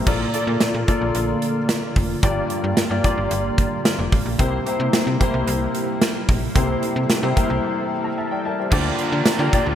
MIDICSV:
0, 0, Header, 1, 6, 480
1, 0, Start_track
1, 0, Tempo, 540541
1, 60, Time_signature, 4, 2, 24, 8
1, 8658, End_track
2, 0, Start_track
2, 0, Title_t, "Grand piano"
2, 0, Program_c, 0, 0
2, 0, Control_c, 0, 64, 127
2, 54, Note_on_c, 0, 58, 78
2, 58, Note_on_c, 0, 65, 75
2, 60, Note_on_c, 0, 46, 69
2, 61, Note_on_c, 0, 69, 69
2, 65, Note_on_c, 0, 74, 83
2, 72, Control_c, 0, 64, 0
2, 212, Note_off_c, 0, 58, 0
2, 215, Note_off_c, 0, 65, 0
2, 216, Note_off_c, 0, 69, 0
2, 218, Note_off_c, 0, 74, 0
2, 234, Control_c, 0, 64, 127
2, 295, Note_on_c, 0, 58, 74
2, 298, Note_on_c, 0, 65, 69
2, 300, Note_on_c, 0, 69, 67
2, 304, Note_on_c, 0, 74, 87
2, 608, Note_off_c, 0, 58, 0
2, 610, Note_off_c, 0, 65, 0
2, 611, Note_off_c, 0, 69, 0
2, 613, Note_off_c, 0, 74, 0
2, 744, Note_off_c, 0, 46, 0
2, 775, Note_on_c, 0, 58, 81
2, 778, Note_on_c, 0, 65, 75
2, 781, Note_on_c, 0, 69, 75
2, 785, Note_on_c, 0, 74, 88
2, 1399, Note_off_c, 0, 58, 0
2, 1401, Note_off_c, 0, 65, 0
2, 1402, Note_off_c, 0, 69, 0
2, 1404, Note_off_c, 0, 74, 0
2, 1976, Note_on_c, 0, 58, 77
2, 1979, Note_on_c, 0, 65, 75
2, 1982, Note_on_c, 0, 43, 74
2, 1984, Note_on_c, 0, 67, 74
2, 1987, Note_on_c, 0, 74, 87
2, 1992, Control_c, 0, 64, 0
2, 2153, Control_c, 0, 64, 127
2, 2367, Note_off_c, 0, 58, 0
2, 2368, Note_off_c, 0, 65, 0
2, 2371, Note_off_c, 0, 67, 0
2, 2372, Note_off_c, 0, 74, 0
2, 2574, Note_on_c, 0, 58, 77
2, 2577, Note_on_c, 0, 65, 67
2, 2582, Note_on_c, 0, 67, 73
2, 2585, Note_on_c, 0, 74, 84
2, 2655, Note_off_c, 0, 58, 0
2, 2656, Note_off_c, 0, 65, 0
2, 2659, Note_off_c, 0, 67, 0
2, 2660, Note_off_c, 0, 74, 0
2, 2666, Note_off_c, 0, 43, 0
2, 2696, Note_on_c, 0, 58, 80
2, 2699, Note_on_c, 0, 65, 79
2, 2704, Note_on_c, 0, 67, 77
2, 2705, Note_on_c, 0, 74, 93
2, 3320, Note_off_c, 0, 58, 0
2, 3321, Note_off_c, 0, 65, 0
2, 3323, Note_off_c, 0, 67, 0
2, 3324, Note_off_c, 0, 74, 0
2, 3895, Note_on_c, 0, 58, 82
2, 3898, Note_on_c, 0, 64, 77
2, 3900, Note_on_c, 0, 48, 67
2, 3901, Note_on_c, 0, 67, 74
2, 3905, Note_on_c, 0, 72, 94
2, 3910, Control_c, 0, 64, 0
2, 4053, Note_off_c, 0, 58, 0
2, 4054, Note_off_c, 0, 64, 0
2, 4056, Note_off_c, 0, 67, 0
2, 4058, Note_off_c, 0, 72, 0
2, 4084, Control_c, 0, 64, 127
2, 4136, Note_on_c, 0, 58, 79
2, 4140, Note_on_c, 0, 64, 71
2, 4142, Note_on_c, 0, 67, 75
2, 4147, Note_on_c, 0, 72, 90
2, 4449, Note_off_c, 0, 58, 0
2, 4451, Note_off_c, 0, 64, 0
2, 4452, Note_off_c, 0, 67, 0
2, 4454, Note_off_c, 0, 72, 0
2, 4585, Note_off_c, 0, 48, 0
2, 4613, Note_on_c, 0, 58, 87
2, 4618, Note_on_c, 0, 64, 80
2, 4621, Note_on_c, 0, 67, 74
2, 4625, Note_on_c, 0, 72, 95
2, 5238, Note_off_c, 0, 58, 0
2, 5240, Note_off_c, 0, 64, 0
2, 5242, Note_off_c, 0, 67, 0
2, 5244, Note_off_c, 0, 72, 0
2, 5816, Note_on_c, 0, 58, 83
2, 5819, Note_on_c, 0, 64, 76
2, 5821, Note_on_c, 0, 48, 70
2, 5822, Note_on_c, 0, 67, 78
2, 5826, Note_on_c, 0, 72, 93
2, 6206, Note_off_c, 0, 58, 0
2, 6208, Note_off_c, 0, 64, 0
2, 6210, Note_off_c, 0, 67, 0
2, 6212, Note_off_c, 0, 72, 0
2, 6414, Note_on_c, 0, 58, 75
2, 6419, Note_on_c, 0, 64, 77
2, 6421, Note_on_c, 0, 67, 73
2, 6425, Note_on_c, 0, 72, 87
2, 6495, Note_off_c, 0, 58, 0
2, 6497, Note_off_c, 0, 64, 0
2, 6498, Note_off_c, 0, 67, 0
2, 6500, Note_off_c, 0, 72, 0
2, 6505, Note_off_c, 0, 48, 0
2, 6534, Note_on_c, 0, 58, 87
2, 6538, Note_on_c, 0, 64, 79
2, 6541, Note_on_c, 0, 67, 80
2, 6544, Note_on_c, 0, 72, 94
2, 7021, Note_off_c, 0, 67, 0
2, 7022, Note_off_c, 0, 72, 0
2, 7142, Note_on_c, 0, 82, 62
2, 7147, Note_on_c, 0, 76, 52
2, 7159, Note_off_c, 0, 58, 0
2, 7161, Note_off_c, 0, 64, 0
2, 7248, Note_off_c, 0, 76, 0
2, 7255, Note_off_c, 0, 82, 0
2, 7262, Note_on_c, 0, 76, 68
2, 7262, Note_on_c, 0, 81, 66
2, 7375, Note_off_c, 0, 81, 0
2, 7378, Note_off_c, 0, 76, 0
2, 7381, Note_on_c, 0, 79, 69
2, 7386, Note_on_c, 0, 74, 59
2, 7495, Note_off_c, 0, 79, 0
2, 7497, Note_off_c, 0, 74, 0
2, 7505, Note_on_c, 0, 76, 65
2, 7505, Note_on_c, 0, 81, 67
2, 7510, Note_on_c, 0, 70, 54
2, 7617, Note_off_c, 0, 76, 0
2, 7619, Note_off_c, 0, 70, 0
2, 7625, Note_on_c, 0, 72, 60
2, 7631, Note_on_c, 0, 67, 54
2, 7726, Note_off_c, 0, 81, 0
2, 7731, Note_off_c, 0, 67, 0
2, 7737, Note_on_c, 0, 58, 81
2, 7739, Note_on_c, 0, 62, 77
2, 7743, Note_on_c, 0, 50, 76
2, 7743, Note_on_c, 0, 65, 74
2, 7745, Note_on_c, 0, 67, 78
2, 7748, Note_on_c, 0, 74, 94
2, 7751, Control_c, 0, 64, 0
2, 7851, Note_off_c, 0, 72, 0
2, 7899, Control_c, 0, 64, 127
2, 8127, Note_off_c, 0, 58, 0
2, 8128, Note_off_c, 0, 62, 0
2, 8130, Note_off_c, 0, 65, 0
2, 8131, Note_off_c, 0, 67, 0
2, 8133, Note_off_c, 0, 74, 0
2, 8337, Note_on_c, 0, 58, 81
2, 8339, Note_on_c, 0, 62, 71
2, 8342, Note_on_c, 0, 65, 74
2, 8346, Note_on_c, 0, 67, 73
2, 8347, Note_on_c, 0, 74, 87
2, 8416, Note_off_c, 0, 58, 0
2, 8417, Note_off_c, 0, 62, 0
2, 8419, Note_off_c, 0, 65, 0
2, 8421, Note_off_c, 0, 67, 0
2, 8422, Note_off_c, 0, 74, 0
2, 8426, Note_off_c, 0, 50, 0
2, 8457, Note_on_c, 0, 58, 83
2, 8462, Note_on_c, 0, 62, 81
2, 8463, Note_on_c, 0, 65, 78
2, 8467, Note_on_c, 0, 67, 79
2, 8469, Note_on_c, 0, 74, 92
2, 8658, Note_off_c, 0, 58, 0
2, 8658, Note_off_c, 0, 62, 0
2, 8658, Note_off_c, 0, 65, 0
2, 8658, Note_off_c, 0, 67, 0
2, 8658, Note_off_c, 0, 74, 0
2, 8658, End_track
3, 0, Start_track
3, 0, Title_t, "String machine"
3, 0, Program_c, 1, 50
3, 59, Note_on_c, 1, 50, 85
3, 59, Note_on_c, 1, 58, 75
3, 59, Note_on_c, 1, 65, 87
3, 59, Note_on_c, 1, 69, 75
3, 1961, Note_off_c, 1, 69, 0
3, 1978, Note_on_c, 1, 55, 77
3, 3864, Note_off_c, 1, 50, 0
3, 3864, Note_off_c, 1, 58, 0
3, 3864, Note_off_c, 1, 65, 0
3, 3901, Note_on_c, 1, 58, 77
3, 3902, Note_on_c, 1, 48, 82
3, 3902, Note_on_c, 1, 64, 91
3, 5802, Note_off_c, 1, 58, 0
3, 5820, Note_on_c, 1, 69, 74
3, 7703, Note_off_c, 1, 55, 0
3, 7705, Note_off_c, 1, 48, 0
3, 7706, Note_off_c, 1, 64, 0
3, 7721, Note_off_c, 1, 69, 0
3, 7742, Note_on_c, 1, 65, 87
3, 7744, Note_on_c, 1, 70, 80
3, 7744, Note_on_c, 1, 74, 75
3, 7744, Note_on_c, 1, 79, 100
3, 8658, Note_off_c, 1, 65, 0
3, 8658, Note_off_c, 1, 70, 0
3, 8658, Note_off_c, 1, 74, 0
3, 8658, Note_off_c, 1, 79, 0
3, 8658, End_track
4, 0, Start_track
4, 0, Title_t, "Overdriven electric guitar"
4, 0, Program_c, 2, 29
4, 7732, Note_on_c, 2, 46, 88
4, 7749, Note_on_c, 2, 53, 100
4, 7762, Note_on_c, 2, 58, 96
4, 8658, Note_off_c, 2, 46, 0
4, 8658, Note_off_c, 2, 53, 0
4, 8658, Note_off_c, 2, 58, 0
4, 8658, End_track
5, 0, Start_track
5, 0, Title_t, "FM bass"
5, 0, Program_c, 3, 39
5, 59, Note_on_c, 3, 34, 102
5, 240, Note_off_c, 3, 34, 0
5, 419, Note_on_c, 3, 46, 96
5, 510, Note_off_c, 3, 46, 0
5, 540, Note_on_c, 3, 46, 47
5, 588, Note_off_c, 3, 46, 0
5, 660, Note_on_c, 3, 46, 95
5, 750, Note_off_c, 3, 46, 0
5, 901, Note_on_c, 3, 34, 79
5, 991, Note_off_c, 3, 34, 0
5, 1022, Note_on_c, 3, 34, 92
5, 1202, Note_off_c, 3, 34, 0
5, 1742, Note_on_c, 3, 29, 90
5, 1921, Note_off_c, 3, 29, 0
5, 1980, Note_on_c, 3, 31, 109
5, 2160, Note_off_c, 3, 31, 0
5, 2343, Note_on_c, 3, 43, 93
5, 2432, Note_off_c, 3, 43, 0
5, 2581, Note_on_c, 3, 43, 89
5, 2671, Note_off_c, 3, 43, 0
5, 2820, Note_on_c, 3, 31, 80
5, 2910, Note_off_c, 3, 31, 0
5, 2940, Note_on_c, 3, 31, 97
5, 3120, Note_off_c, 3, 31, 0
5, 3540, Note_on_c, 3, 29, 86
5, 3630, Note_off_c, 3, 29, 0
5, 3662, Note_on_c, 3, 33, 91
5, 3751, Note_off_c, 3, 33, 0
5, 3780, Note_on_c, 3, 34, 82
5, 3870, Note_off_c, 3, 34, 0
5, 3901, Note_on_c, 3, 36, 104
5, 4081, Note_off_c, 3, 36, 0
5, 4260, Note_on_c, 3, 48, 98
5, 4350, Note_off_c, 3, 48, 0
5, 4381, Note_on_c, 3, 48, 50
5, 4429, Note_off_c, 3, 48, 0
5, 4501, Note_on_c, 3, 48, 92
5, 4591, Note_off_c, 3, 48, 0
5, 4740, Note_on_c, 3, 36, 91
5, 4830, Note_off_c, 3, 36, 0
5, 4862, Note_on_c, 3, 36, 102
5, 5041, Note_off_c, 3, 36, 0
5, 5583, Note_on_c, 3, 34, 92
5, 5762, Note_off_c, 3, 34, 0
5, 5821, Note_on_c, 3, 36, 102
5, 6001, Note_off_c, 3, 36, 0
5, 6181, Note_on_c, 3, 48, 91
5, 6271, Note_off_c, 3, 48, 0
5, 6301, Note_on_c, 3, 48, 51
5, 6349, Note_off_c, 3, 48, 0
5, 6420, Note_on_c, 3, 48, 101
5, 6510, Note_off_c, 3, 48, 0
5, 6660, Note_on_c, 3, 36, 89
5, 6750, Note_off_c, 3, 36, 0
5, 7741, Note_on_c, 3, 38, 109
5, 7920, Note_off_c, 3, 38, 0
5, 8101, Note_on_c, 3, 50, 101
5, 8191, Note_off_c, 3, 50, 0
5, 8220, Note_on_c, 3, 50, 49
5, 8268, Note_off_c, 3, 50, 0
5, 8338, Note_on_c, 3, 50, 103
5, 8429, Note_off_c, 3, 50, 0
5, 8579, Note_on_c, 3, 38, 89
5, 8658, Note_off_c, 3, 38, 0
5, 8658, End_track
6, 0, Start_track
6, 0, Title_t, "Drums"
6, 59, Note_on_c, 9, 49, 93
6, 60, Note_on_c, 9, 36, 110
6, 148, Note_off_c, 9, 36, 0
6, 148, Note_off_c, 9, 49, 0
6, 299, Note_on_c, 9, 42, 69
6, 388, Note_off_c, 9, 42, 0
6, 537, Note_on_c, 9, 38, 103
6, 539, Note_on_c, 9, 42, 89
6, 626, Note_off_c, 9, 38, 0
6, 628, Note_off_c, 9, 42, 0
6, 782, Note_on_c, 9, 42, 74
6, 783, Note_on_c, 9, 36, 89
6, 871, Note_off_c, 9, 42, 0
6, 872, Note_off_c, 9, 36, 0
6, 1019, Note_on_c, 9, 42, 83
6, 1107, Note_off_c, 9, 42, 0
6, 1261, Note_on_c, 9, 42, 74
6, 1350, Note_off_c, 9, 42, 0
6, 1500, Note_on_c, 9, 38, 110
6, 1502, Note_on_c, 9, 42, 91
6, 1589, Note_off_c, 9, 38, 0
6, 1590, Note_off_c, 9, 42, 0
6, 1741, Note_on_c, 9, 46, 74
6, 1742, Note_on_c, 9, 36, 94
6, 1830, Note_off_c, 9, 46, 0
6, 1831, Note_off_c, 9, 36, 0
6, 1980, Note_on_c, 9, 36, 113
6, 1980, Note_on_c, 9, 42, 99
6, 2069, Note_off_c, 9, 36, 0
6, 2069, Note_off_c, 9, 42, 0
6, 2220, Note_on_c, 9, 42, 65
6, 2308, Note_off_c, 9, 42, 0
6, 2459, Note_on_c, 9, 38, 105
6, 2461, Note_on_c, 9, 42, 89
6, 2548, Note_off_c, 9, 38, 0
6, 2550, Note_off_c, 9, 42, 0
6, 2701, Note_on_c, 9, 42, 78
6, 2702, Note_on_c, 9, 36, 87
6, 2789, Note_off_c, 9, 42, 0
6, 2791, Note_off_c, 9, 36, 0
6, 2938, Note_on_c, 9, 42, 82
6, 3027, Note_off_c, 9, 42, 0
6, 3180, Note_on_c, 9, 36, 87
6, 3181, Note_on_c, 9, 42, 72
6, 3269, Note_off_c, 9, 36, 0
6, 3270, Note_off_c, 9, 42, 0
6, 3421, Note_on_c, 9, 38, 113
6, 3423, Note_on_c, 9, 42, 89
6, 3510, Note_off_c, 9, 38, 0
6, 3512, Note_off_c, 9, 42, 0
6, 3662, Note_on_c, 9, 36, 97
6, 3662, Note_on_c, 9, 46, 78
6, 3751, Note_off_c, 9, 36, 0
6, 3751, Note_off_c, 9, 46, 0
6, 3901, Note_on_c, 9, 36, 110
6, 3902, Note_on_c, 9, 42, 103
6, 3990, Note_off_c, 9, 36, 0
6, 3991, Note_off_c, 9, 42, 0
6, 4143, Note_on_c, 9, 42, 70
6, 4231, Note_off_c, 9, 42, 0
6, 4381, Note_on_c, 9, 38, 107
6, 4383, Note_on_c, 9, 42, 83
6, 4469, Note_off_c, 9, 38, 0
6, 4472, Note_off_c, 9, 42, 0
6, 4624, Note_on_c, 9, 36, 87
6, 4625, Note_on_c, 9, 42, 78
6, 4713, Note_off_c, 9, 36, 0
6, 4713, Note_off_c, 9, 42, 0
6, 4862, Note_on_c, 9, 42, 85
6, 4950, Note_off_c, 9, 42, 0
6, 5102, Note_on_c, 9, 42, 76
6, 5191, Note_off_c, 9, 42, 0
6, 5342, Note_on_c, 9, 38, 116
6, 5343, Note_on_c, 9, 42, 92
6, 5430, Note_off_c, 9, 38, 0
6, 5432, Note_off_c, 9, 42, 0
6, 5583, Note_on_c, 9, 36, 101
6, 5583, Note_on_c, 9, 46, 80
6, 5672, Note_off_c, 9, 36, 0
6, 5672, Note_off_c, 9, 46, 0
6, 5822, Note_on_c, 9, 36, 113
6, 5822, Note_on_c, 9, 42, 110
6, 5910, Note_off_c, 9, 36, 0
6, 5911, Note_off_c, 9, 42, 0
6, 6062, Note_on_c, 9, 42, 72
6, 6151, Note_off_c, 9, 42, 0
6, 6301, Note_on_c, 9, 38, 103
6, 6303, Note_on_c, 9, 42, 84
6, 6390, Note_off_c, 9, 38, 0
6, 6392, Note_off_c, 9, 42, 0
6, 6543, Note_on_c, 9, 36, 86
6, 6543, Note_on_c, 9, 42, 76
6, 6632, Note_off_c, 9, 36, 0
6, 6632, Note_off_c, 9, 42, 0
6, 7740, Note_on_c, 9, 49, 102
6, 7741, Note_on_c, 9, 36, 117
6, 7829, Note_off_c, 9, 36, 0
6, 7829, Note_off_c, 9, 49, 0
6, 7980, Note_on_c, 9, 42, 73
6, 8069, Note_off_c, 9, 42, 0
6, 8219, Note_on_c, 9, 38, 111
6, 8219, Note_on_c, 9, 54, 61
6, 8221, Note_on_c, 9, 42, 89
6, 8307, Note_off_c, 9, 54, 0
6, 8308, Note_off_c, 9, 38, 0
6, 8310, Note_off_c, 9, 42, 0
6, 8463, Note_on_c, 9, 36, 95
6, 8463, Note_on_c, 9, 42, 78
6, 8552, Note_off_c, 9, 36, 0
6, 8552, Note_off_c, 9, 42, 0
6, 8658, End_track
0, 0, End_of_file